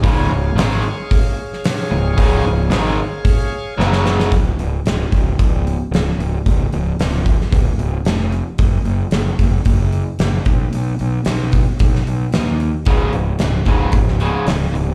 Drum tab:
HH |o---o---o---o---|o---o---o-------|o-o-o-o-o-o-o-o-|o-o-o-o-o-o-o-o-|
SD |----o------oo---|----o-------oooo|----o-------o---|----o--o----o---|
BD |o-------o-------|o-------o-------|o-----o-o-------|o-----o-o-------|

HH |o-o-o-o-o-o-o-o-|o-o-o-o-o-o-o-o-|o-o-o-o-o-o-o-o-|
SD |----o-------o---|----o----o--o---|----o----o--o---|
BD |o-----o-o-----o-|------o-o-------|o-----o-o-------|